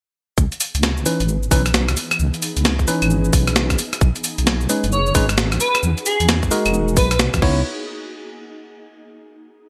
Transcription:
0.38 C#2 E3 B3 D#4 G#4, kick, shaker
0.52 closed hi-hat, shaker
0.60 open hi-hat, shaker
0.75 C#2, closed hi-hat, shaker
0.83 snare, shaker
0.98 shaker
1.06 E3 C#4 D#4 B4, open hi-hat, shaker
1.20 G#1, closed hi-hat, shaker
1.29 shaker
1.43 shaker
1.51 B1 E3 C#4 D#4 B4, kick, open hi-hat, shaker
1.66 cross-stick, closed hi-hat, shaker
1.74 snare, shaker
1.89 C#2, cross-stick, closed hi-hat, shaker
1.97 open hi-hat, shaker
2.11 cross-stick, closed hi-hat, claves, shaker
2.20 C#2, shaker
2.34 closed hi-hat, shaker
2.42 open hi-hat, shaker
2.57 C#2, closed hi-hat, shaker
2.65 snare, shaker
2.79 kick, shaker
2.88 E3 C#4 D#4 B4, open hi-hat, shaker
3.02 G#1, closed hi-hat, claves, shaker
3.10 shaker
3.25 shaker
3.33 B1, kick, open hi-hat, shaker
3.47 cross-stick, closed hi-hat, shaker
3.56 snare, shaker
3.70 C#2, kick, cross-stick, closed hi-hat, shaker
3.79 C#4 F#4, open hi-hat, shaker
3.93 cross-stick, closed hi-hat, shaker
4.01 B1, kick, shaker
4.16 closed hi-hat, shaker
4.24 open hi-hat, shaker
4.38 B1, closed hi-hat, shaker
4.47 snare, shaker
4.61 shaker
4.69 G#3 C#4 D#4 B4, open hi-hat, shaker
4.84 F#1, closed hi-hat, shaker
4.92 C#5, shaker
5.07 C#5, shaker
5.15 G#1 G#3 C#4 D#4 B4, kick, open hi-hat, shaker
5.29 cross-stick, closed hi-hat, shaker
5.38 snare, shaker
5.52 B1, cross-stick, closed hi-hat, shaker
5.60 B4, open hi-hat, shaker
5.75 cross-stick, closed hi-hat, claves, shaker
5.83 E2 A#3 D#4, shaker
5.98 closed hi-hat, shaker
6.06 G#4, open hi-hat, shaker
6.20 E2, closed hi-hat, shaker
6.29 snare, shaker
6.43 kick, shaker
6.51 G#3 D#4 F#4 A#4, open hi-hat, shaker
6.66 E1, closed hi-hat, claves, shaker
6.74 shaker
6.88 shaker
6.97 B1 B4, kick, open hi-hat, shaker
7.11 B4, cross-stick, closed hi-hat, shaker
7.19 snare, shaker
7.34 E2, kick, cross-stick, closed hi-hat, shaker
7.42 C#2 B3 D#4 E4 C#5, kick, crash

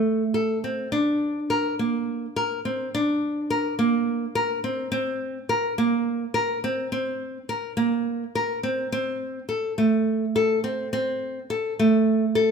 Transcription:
Already playing: A3
0.34 A4
0.64 C4
0.92 D4
1.50 A#4
1.79 A#3
2.36 A#4
2.65 C4
2.95 D4
3.50 A#4
3.79 A#3
4.35 A#4
4.64 C4
4.92 C4
5.49 A#4
5.78 A#3
6.34 A#4
6.64 C4
6.92 C4
7.49 A#4
7.77 A#3
8.35 A#4
8.63 C4
8.92 C4
9.49 A4
9.78 A3
10.36 A4
10.64 C4
10.93 C4
11.50 A4
11.79 A3
12.35 A4

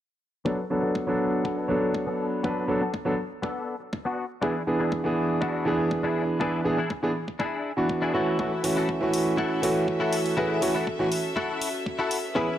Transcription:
0.45 F#3 B3 D4 A4, kick
0.70 F#3 B3 D4 A4
0.83 B3 D4 A4
0.95 kick
1.07 F#3 B3 D4 A4, muted clean electric guitar stroke
1.44 B3 D4 A4, kick
1.68 F#3 B3 D4 A4
1.94 kick
2.07 B3 D4 A4
2.43 F#3 B3 D4 A4 B4, kick
2.68 F#3 B3 D4 A4
2.81 B3 D4 A4
2.94 kick
3.05 F#3 B3 D4 A4, muted clean electric guitar stroke
3.42 B3 D4 A4, kick
3.93 kick
4.05 B3 D4 F#4
4.41 E3 B3 D4 E4 G#4, kick
4.67 E3 B3 D4 G#4
4.79 D4 E4 G#4
4.92 kick
5.04 E3 B3 D4 G#4, muted clean electric guitar stroke
5.41 D4 E4 F#4, kick
5.65 E3 B3 D4 G#4
5.91 kick
6.03 D4 E4 G#4
6.40 E3 B3 D4 E4 G#4 B4, kick
6.65 E3 B3 D4 G#4
6.78 D4 E4 G#4
6.90 kick
7.03 E3 B3 D4 G#4, muted clean electric guitar stroke
7.28 kick
7.39 D4 E4 G#4, kick
7.77 E3 B3 D4 F#4
7.89 kick
8.02 D4 E4 G#4
8.13 E3 A3 C#4 E4 F#4 A4
8.39 E3 A3 C#4 F#4 A4 E5, kick
8.63 E3 A3 C#4 F#4, open hi-hat
8.76 E4 F#4 A4
8.89 kick
9.01 E3 A3 C#4 F#4, muted clean electric guitar stroke
9.13 open hi-hat
9.37 E4 F#4 A4, kick
9.62 E3 A3 C#4 F#4, open hi-hat
9.88 kick
10.00 E4 F#4 A4
10.13 open hi-hat
10.26 open hi-hat
10.37 E3 A3 C#4 E4 F#4 G#4 B4, kick
10.61 E3 A3 C#4 F#4, open hi-hat
10.75 E4 F#4 A4
10.87 kick
10.99 E3 A3 C#4 F#4, muted clean electric guitar stroke
11.12 open hi-hat
11.36 E4 F#4 A4, kick
11.62 open hi-hat
11.86 kick
11.99 E4 F#4 A4
12.11 open hi-hat
12.35 E3 B3 C#4 E4 G#4 B4, kick

